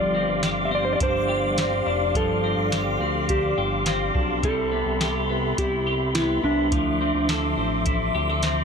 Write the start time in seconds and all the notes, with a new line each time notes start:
Already playing: G1 F3 C4 G4 D5 F5 C6 D6
0.15 C4
0.28 G1
0.43 G4 D5, snare, closed hi-hat
0.65 E5
0.71 C4 D5
0.85 C5
0.93 D5
1.00 G1 D4 C5, kick, closed hi-hat
1.29 G4
1.58 C4, snare, closed hi-hat
1.86 F1 D4
2.15 G1 F3 A4, kick, closed hi-hat
2.44 C4
2.57 G1
2.72 G4, snare, closed hi-hat
3.00 D2 C4
3.29 D4 G4, kick, closed hi-hat
3.58 G1 G4
3.86 C4, snare, closed hi-hat
4.15 B1 D4, kick
4.43 C2 G3 A4 E5 B5, kick, closed hi-hat
4.72 B3
4.86 C2
5.01 G4, snare, closed hi-hat
5.29 B3
5.58 C2 E4 G4, kick, closed hi-hat
5.87 G4
6.15 B3 E4, snare, closed hi-hat
6.43 C2 D4 E4
6.72 D2 F3 D6, kick, closed hi-hat
7.01 C4
7.15 D2
7.29 A4, snare, closed hi-hat
7.57 A1 C4
7.86 E4, kick, closed hi-hat
8.15 D2 G4
8.30 A4
8.43 C4, snare, closed hi-hat